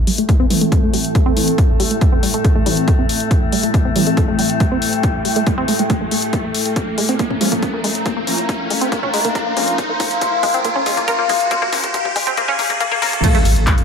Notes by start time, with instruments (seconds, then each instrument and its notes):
Already playing: synth drone A2 A3, ambient pad A4, riser
0.06 synth arpeggio sound G3, ambient pad E5, open hi-hat
0.18 synth arpeggio sound A3, closed hi-hat
0.29 synth arpeggio sound A3, kick, closed hi-hat
0.40 synth arpeggio sound C4
0.50 synth stab E3 A3 C4, synth arpeggio sound G3, open hi-hat
0.56 ambient pad A5
0.61 synth arpeggio sound A3, closed hi-hat
0.72 synth arpeggio sound A4, kick, closed hi-hat
0.83 synth arpeggio sound A3
0.93 synth arpeggio sound G3, open hi-hat
1.05 closed hi-hat
1.15 synth arpeggio sound A3, kick, closed hi-hat
1.26 synth arpeggio sound C4
1.36 synth stab E3 A3 C4, open hi-hat
1.48 closed hi-hat
1.58 kick, closed hi-hat
1.80 synth arpeggio sound G3, open hi-hat
1.91 synth arpeggio sound A3, closed hi-hat
2.01 synth arpeggio sound A3, kick, closed hi-hat
2.12 synth arpeggio sound C4
2.23 synth arpeggio sound G3, open hi-hat
2.34 synth arpeggio sound A3, closed hi-hat
2.44 synth arpeggio sound A4, kick, closed hi-hat
2.55 synth arpeggio sound A3
2.66 synth stab E3 A3 C4, synth arpeggio sound G3, open hi-hat
2.77 closed hi-hat
2.88 synth arpeggio sound A3, kick, closed hi-hat
2.99 synth arpeggio sound C4
3.09 open hi-hat
3.20 ambient pad G5, closed hi-hat
3.31 kick, closed hi-hat
3.52 synth arpeggio sound G3, open hi-hat
3.63 synth arpeggio sound A3, closed hi-hat
3.74 synth arpeggio sound A3, kick, closed hi-hat
3.85 synth arpeggio sound C4
3.96 synth stab E3 A3 C4, synth arpeggio sound G3, open hi-hat
4.07 synth arpeggio sound A3, closed hi-hat
4.17 synth arpeggio sound A4, kick, closed hi-hat
4.28 synth arpeggio sound A3
4.39 synth arpeggio sound G3, open hi-hat
4.50 closed hi-hat
4.60 synth arpeggio sound A3, kick, closed hi-hat
4.71 synth arpeggio sound C4
4.82 open hi-hat
4.93 closed hi-hat
5.03 kick, closed hi-hat
5.25 synth arpeggio sound G3, open hi-hat
5.36 synth arpeggio sound A3, closed hi-hat
5.47 synth arpeggio sound A3, kick, closed hi-hat
5.58 synth arpeggio sound C4
5.68 synth arpeggio sound A3, open hi-hat
5.79 synth arpeggio sound A3, closed hi-hat
5.90 synth arpeggio sound A3, kick, closed hi-hat
6.01 synth arpeggio sound A3
6.11 synth arpeggio sound A3, open hi-hat
6.22 closed hi-hat
6.33 synth arpeggio sound A#3, ambient pad A#5, kick, closed hi-hat
6.44 synth arpeggio sound A#3
6.54 open hi-hat
6.66 closed hi-hat
6.76 kick, closed hi-hat
6.88 ambient pad F5
6.98 synth arpeggio sound G#3, open hi-hat
7.09 synth arpeggio sound C4, closed hi-hat
7.19 synth arpeggio sound A#3, kick, closed hi-hat
7.30 synth arpeggio sound C#4, mid tom
7.41 synth stab F3 A#3 C#4, synth arpeggio sound G#3, open hi-hat
7.52 synth arpeggio sound A#3, closed hi-hat, mid tom
7.62 synth arpeggio sound A#4, kick, closed hi-hat
7.74 synth arpeggio sound A#3, ambient pad C6
7.84 synth arpeggio sound G#3, open hi-hat
7.95 closed hi-hat
8.06 synth arpeggio sound A#3, kick, closed hi-hat
8.17 synth arpeggio sound A#3
8.27 synth stab F3 A#3 C#4, open hi-hat
8.38 closed hi-hat
8.49 kick, closed hi-hat
8.70 synth arpeggio sound G#3, open hi-hat
8.81 synth arpeggio sound C4, closed hi-hat
8.92 synth arpeggio sound A#3, kick, closed hi-hat
9.03 synth arpeggio sound C#4, mid tom
9.14 synth arpeggio sound G#3, open hi-hat
9.25 synth arpeggio sound A#3, closed hi-hat, mid tom
9.35 synth arpeggio sound A#4, kick, closed hi-hat
9.46 synth arpeggio sound A#3
9.57 synth stab F3 A#3 C#4, synth arpeggio sound G#3, open hi-hat
9.68 closed hi-hat
9.78 synth arpeggio sound A#3, kick, closed hi-hat
9.89 synth arpeggio sound A#3
10.00 kick, open hi-hat
10.11 closed hi-hat
10.21 kick, closed hi-hat
10.43 synth arpeggio sound G#3, kick, open hi-hat
10.54 synth arpeggio sound C4, closed hi-hat
10.65 synth arpeggio sound A#3, kick, closed hi-hat
10.76 synth arpeggio sound C#4, mid tom
10.86 synth stab F3 A#3 C#4, synth arpeggio sound G#3, kick, open hi-hat
10.97 synth arpeggio sound A#3, closed hi-hat, mid tom
11.08 synth arpeggio sound A#4, kick, closed hi-hat
11.19 synth arpeggio sound A#3
11.29 synth arpeggio sound G#3, kick, open hi-hat
11.40 closed hi-hat
11.51 synth arpeggio sound A#3, kick, closed hi-hat
11.62 synth arpeggio sound A#3, kick, mid tom
11.72 synth stab F3 A#3 C#4, kick, open hi-hat
11.84 kick, closed hi-hat
11.94 kick, closed hi-hat
12.05 kick
12.16 synth arpeggio sound G#3, kick, open hi-hat
12.27 synth arpeggio sound C4, kick, closed hi-hat
12.37 synth arpeggio sound A#3, kick, closed hi-hat
12.48 synth arpeggio sound C#4, kick, mid tom
12.59 synth arpeggio sound A#3, kick, open hi-hat
12.70 synth arpeggio sound A#3, kick, closed hi-hat, mid tom
12.80 synth arpeggio sound A#3, kick, closed hi-hat
12.91 synth arpeggio sound A#3, kick
13.02 synth stab F3 A#3 C#4, synth arpeggio sound A#3, kick, open hi-hat
13.13 kick, closed hi-hat
13.24 synth arpeggio sound A3, ambient pad A4, kick, closed hi-hat, crash, impact
13.35 synth arpeggio sound A3, ambient pad E5, closed hi-hat
13.45 sub bass A1, open hi-hat
13.56 sub bass A1, closed hi-hat
13.67 kick, clap, closed hi-hat
13.78 closed hi-hat